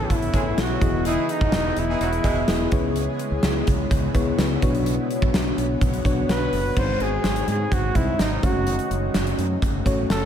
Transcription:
Already playing: fm electric piano A2 B3 E4 A4 C#5, ambient pad C#3 A3 B3 E4, flugelhorn A4
0.10 fretless electric bass A1, flugelhorn E4, kick, closed hi-hat
0.22 closed hi-hat
0.34 fretless electric bass A1, horn section G#3 E4 G#4, fm electric piano B3 E4 A4 C#5, kick, closed hi-hat
0.57 fretless electric bass B1, fm electric piano B3 E4 A4 C#5, flugelhorn F#4, snare, closed hi-hat
0.81 fretless electric bass E1, ambient pad E3 G#3 G#4, fm electric piano E3 B3 E4 G#4 D#5, kick, closed hi-hat
1.05 horn section E3 D#4 G#4, flugelhorn E4, closed hi-hat
1.29 flugelhorn D#4, closed hi-hat
1.41 fretless electric bass E1, horn section F#3 D#4 F#4, kick
1.52 fretless electric bass E1, horn section E3 D#4 G#4, snare, closed hi-hat
1.65 horn section B2 G#3 E4
1.77 fretless electric bass E1, flugelhorn E4, closed hi-hat
1.89 horn section E3 D#4 G#4
2.00 fretless electric bass E1, horn section F#3 D#4 F#4, closed hi-hat
2.13 closed hi-hat
2.24 fretless electric bass E1, horn section B2 G#3 E4, fm electric piano B3 E4 G#4 D#5, kick, closed hi-hat
2.48 fretless electric bass E1, fm electric piano B3 E4 G#4 D#5, snare, closed hi-hat
2.71 fretless electric bass C#2, ambient pad C#3 B3 E4, fm electric piano C#3 B3 E4 G#4 C#5, kick, closed hi-hat
2.96 closed hi-hat
3.19 closed hi-hat
3.31 fretless electric bass C#2
3.43 fretless electric bass C#2, snare, closed hi-hat
3.67 fretless electric bass C#2, kick, closed hi-hat
3.91 fretless electric bass C#2, kick, closed hi-hat
4.14 fretless electric bass C#2, fm electric piano B3 E4 G#4 C#5, kick, closed hi-hat
4.38 fretless electric bass C#2, fm electric piano B3 E4 G#4 C#5, snare, closed hi-hat
4.62 fretless electric bass B1, fm electric piano B2 B3 D4 F#4 C#5, ambient pad D3 B3 F#4 C#5, kick, closed hi-hat
4.75 closed hi-hat
4.86 closed hi-hat
5.11 closed hi-hat
5.22 fretless electric bass B1, kick
5.33 fretless electric bass B1, snare, closed hi-hat
5.57 fretless electric bass B1, closed hi-hat
5.81 fretless electric bass B1, kick, closed hi-hat
5.94 closed hi-hat
6.05 fretless electric bass B1, fm electric piano B3 D4 F#4 C#5, kick, closed hi-hat
6.28 fretless electric bass B1, fm electric piano B3 D4 F#4 C#5, flugelhorn B4, snare, closed hi-hat
6.52 fretless electric bass F#1, open hi-hat
6.76 fretless electric bass G#1, fm electric piano G#2 G#3 C4 D#4 C5, ambient pad C3 D#3 G#3 D#4, flugelhorn C5, kick, crash
7.00 fretless electric bass G#1, flugelhorn G#4, closed hi-hat
7.24 fretless electric bass G#1, snare, closed hi-hat
7.36 closed hi-hat
7.47 fretless electric bass G#2, flugelhorn G#4, closed hi-hat
7.72 fretless electric bass G#1, flugelhorn F#4, kick, closed hi-hat
7.95 fretless electric bass C2, fm electric piano G#3 C4 D#4 C5, flugelhorn E4, kick, closed hi-hat
8.19 fretless electric bass G#1, flugelhorn D#4, snare, closed hi-hat
8.42 fretless electric bass F#1, ambient pad C#3 F#3 A3 F#4, fm electric piano A3 C#4 F#4 C#5, flugelhorn F#4, kick, closed hi-hat
8.67 closed hi-hat
8.79 closed hi-hat
8.91 fretless electric bass F#1, closed hi-hat
9.14 fretless electric bass F#1, snare, closed hi-hat
9.27 closed hi-hat
9.38 fretless electric bass F#2, closed hi-hat
9.62 fretless electric bass F#1, kick, closed hi-hat
9.85 fretless electric bass A1, fm electric piano A3 C#4 F#4 C#5, kick, closed hi-hat
10.09 fretless electric bass F#1, flugelhorn A4, snare, closed hi-hat

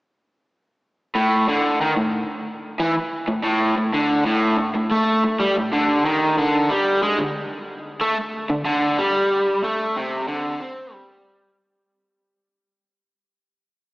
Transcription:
1.15 overdriven electric guitar A2
1.48 overdriven electric guitar D3
1.81 overdriven electric guitar D#3
1.96 overdriven electric guitar A2
2.80 overdriven electric guitar E3
3.28 overdriven electric guitar A2
3.43 overdriven electric guitar A2
3.77 overdriven electric guitar A2
3.93 overdriven electric guitar D3
4.26 overdriven electric guitar A2
4.59 overdriven electric guitar A2
4.75 overdriven electric guitar A2
4.91 overdriven electric guitar A3
5.24 muted overdriven electric guitar stroke
5.40 overdriven electric guitar G3
5.57 overdriven electric guitar A2
5.73 overdriven electric guitar D3
6.06 overdriven electric guitar D#3
6.38 overdriven electric guitar D3
6.70 overdriven electric guitar G3
7.03 overdriven electric guitar G#3
7.18 overdriven electric guitar D3
8.01 overdriven electric guitar A3
8.50 overdriven electric guitar D3
8.65 overdriven electric guitar D3
8.98 overdriven electric guitar G3
9.63 overdriven electric guitar A3
9.96 overdriven electric guitar C3
10.28 overdriven electric guitar D3
10.60 overdriven electric guitar C4
10.92 overdriven electric guitar G3

